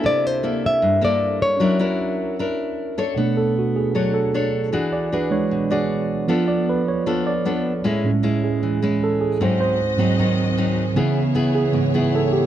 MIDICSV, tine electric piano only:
0, 0, Header, 1, 2, 480
1, 0, Start_track
1, 0, Tempo, 389864
1, 62, Time_signature, 4, 2, 24, 8
1, 15343, End_track
2, 0, Start_track
2, 0, Title_t, "Tine electric piano"
2, 0, Program_c, 0, 4
2, 0, Control_c, 0, 64, 127
2, 17, Note_on_c, 0, 62, 45
2, 29, Note_on_c, 0, 69, 43
2, 74, Note_on_c, 0, 72, 40
2, 77, Control_c, 0, 64, 0
2, 93, Note_on_c, 0, 76, 51
2, 319, Control_c, 0, 64, 127
2, 1920, Note_off_c, 0, 62, 0
2, 1926, Note_off_c, 0, 69, 0
2, 1935, Note_on_c, 0, 61, 44
2, 1948, Note_off_c, 0, 72, 0
2, 1959, Note_off_c, 0, 76, 0
2, 1963, Note_on_c, 0, 66, 40
2, 1988, Note_on_c, 0, 70, 38
2, 1996, Control_c, 0, 64, 0
2, 2016, Note_on_c, 0, 76, 47
2, 2188, Control_c, 0, 64, 127
2, 3839, Note_off_c, 0, 61, 0
2, 3853, Note_off_c, 0, 66, 0
2, 3866, Note_off_c, 0, 70, 0
2, 3880, Note_off_c, 0, 76, 0
2, 3893, Note_on_c, 0, 47, 39
2, 3901, Note_on_c, 0, 57, 31
2, 3910, Note_on_c, 0, 62, 39
2, 3914, Control_c, 0, 64, 0
2, 4151, Note_on_c, 0, 69, 56
2, 4159, Control_c, 0, 64, 127
2, 4216, Note_off_c, 0, 47, 0
2, 4220, Note_off_c, 0, 57, 0
2, 4225, Note_off_c, 0, 62, 0
2, 4379, Note_off_c, 0, 69, 0
2, 4415, Note_on_c, 0, 66, 46
2, 4631, Note_off_c, 0, 66, 0
2, 4633, Note_on_c, 0, 68, 54
2, 5074, Note_off_c, 0, 68, 0
2, 5095, Note_on_c, 0, 69, 52
2, 5331, Note_off_c, 0, 69, 0
2, 5839, Control_c, 0, 64, 0
2, 6048, Control_c, 0, 64, 127
2, 6066, Note_on_c, 0, 74, 65
2, 6296, Note_off_c, 0, 74, 0
2, 6328, Note_on_c, 0, 71, 54
2, 6532, Note_on_c, 0, 52, 40
2, 6539, Note_on_c, 0, 56, 37
2, 6545, Note_on_c, 0, 62, 42
2, 6547, Note_on_c, 0, 73, 61
2, 6548, Note_off_c, 0, 71, 0
2, 6856, Note_off_c, 0, 52, 0
2, 6859, Note_off_c, 0, 56, 0
2, 6862, Note_off_c, 0, 62, 0
2, 6990, Note_off_c, 0, 73, 0
2, 7036, Note_on_c, 0, 74, 62
2, 7262, Note_off_c, 0, 74, 0
2, 7729, Note_on_c, 0, 53, 35
2, 7730, Note_on_c, 0, 59, 38
2, 7738, Note_on_c, 0, 65, 43
2, 7758, Control_c, 0, 64, 0
2, 7976, Note_on_c, 0, 74, 67
2, 8005, Control_c, 0, 64, 127
2, 8212, Note_off_c, 0, 74, 0
2, 8243, Note_on_c, 0, 71, 62
2, 8465, Note_off_c, 0, 71, 0
2, 8475, Note_on_c, 0, 73, 60
2, 8915, Note_off_c, 0, 73, 0
2, 8947, Note_on_c, 0, 74, 66
2, 9089, Note_off_c, 0, 74, 0
2, 9606, Note_off_c, 0, 53, 0
2, 9606, Note_off_c, 0, 59, 0
2, 9610, Note_off_c, 0, 65, 0
2, 9677, Control_c, 0, 64, 0
2, 9885, Control_c, 0, 64, 127
2, 9901, Note_on_c, 0, 45, 37
2, 9911, Note_on_c, 0, 56, 35
2, 9921, Note_on_c, 0, 61, 45
2, 10220, Note_off_c, 0, 45, 0
2, 10225, Note_off_c, 0, 56, 0
2, 10231, Note_off_c, 0, 61, 0
2, 10391, Note_on_c, 0, 68, 58
2, 11057, Note_off_c, 0, 68, 0
2, 11126, Note_on_c, 0, 69, 65
2, 11341, Note_on_c, 0, 68, 54
2, 11346, Note_off_c, 0, 69, 0
2, 11574, Note_off_c, 0, 68, 0
2, 11597, Control_c, 0, 64, 0
2, 11610, Note_on_c, 0, 72, 48
2, 11806, Control_c, 0, 64, 127
2, 11812, Note_off_c, 0, 72, 0
2, 11827, Note_on_c, 0, 72, 58
2, 12056, Note_off_c, 0, 72, 0
2, 12281, Note_on_c, 0, 44, 39
2, 12287, Note_on_c, 0, 54, 37
2, 12292, Note_on_c, 0, 60, 42
2, 12974, Note_off_c, 0, 44, 0
2, 12977, Note_off_c, 0, 54, 0
2, 12980, Note_off_c, 0, 60, 0
2, 13479, Note_on_c, 0, 49, 37
2, 13491, Note_on_c, 0, 52, 36
2, 13497, Note_on_c, 0, 59, 44
2, 13518, Control_c, 0, 64, 0
2, 13763, Control_c, 0, 64, 127
2, 14173, Note_off_c, 0, 49, 0
2, 14179, Note_off_c, 0, 52, 0
2, 14182, Note_off_c, 0, 59, 0
2, 14220, Note_on_c, 0, 68, 62
2, 14431, Note_on_c, 0, 49, 36
2, 14439, Note_on_c, 0, 52, 32
2, 14446, Note_on_c, 0, 59, 39
2, 14660, Note_off_c, 0, 49, 0
2, 14664, Note_off_c, 0, 52, 0
2, 14668, Note_off_c, 0, 59, 0
2, 14891, Note_off_c, 0, 68, 0
2, 14963, Note_on_c, 0, 69, 66
2, 15173, Note_on_c, 0, 67, 63
2, 15184, Note_off_c, 0, 69, 0
2, 15343, Note_off_c, 0, 67, 0
2, 15343, End_track
0, 0, End_of_file